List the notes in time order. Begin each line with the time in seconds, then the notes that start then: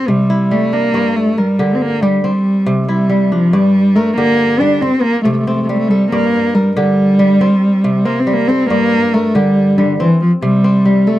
Already playing: C4 G4
0.08 C3 G3
0.30 E4
0.51 G3 A3
0.73 A#3 D4
0.94 G2 D5
1.16 A3
1.38 G3 A#4
1.59 D3 G4
1.75 C4
1.81 A#3
2.02 G3 G4
2.24 G3 C4
2.66 C3
2.88 G3 E4
3.09 G3
3.32 F3 D4
3.53 G2 G3 D5
3.95 A3 A#4
4.16 D3 A#3 G4
4.60 G3 D4
4.81 C4
5.01 A#3
5.23 C3 A3
5.32 A3
5.40 A3
5.47 A3 C4
5.56 A3
5.62 A3
5.69 G3 A3
5.78 A3
5.89 G3 A4
6.11 G2 A#3 D5
6.54 G3 A#4
6.76 D3 G3 G4
7.19 G3
7.41 C4
7.84 C3
8.05 A#3 C4
8.20 C4
8.27 G3
8.34 A#3
8.48 C4 A4
8.70 G2 A#3 D5
9.13 A3 A#4
9.35 D3 G3 G4
9.78 D3 G3
10.00 E3 C4
10.22 F3
10.42 C3 G3
10.64 C4
10.85 G3
11.07 A3 A4